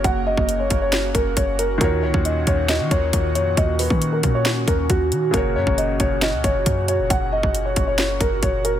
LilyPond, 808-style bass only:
\new Staff \with { instrumentName = "808-style bass" } { \clef bass \time 4/4 \key fis \major \tempo 4 = 136 fis,,8. fis,,8. fis,,4 fis,,8 fis,,4 | dis,8 cis,16 dis,8. dis,8. dis16 dis,8 dis,8 eis,8 | dis,8. dis8. ais,4 dis,8 dis,8 dis8 | fis,,8 fis,16 fis,,8. fis,,8. cis,16 fis,,8 fis,8. eis,,16 |
fis,,8. fis,,8. fis,,4 fis,,8 fis,,4 | }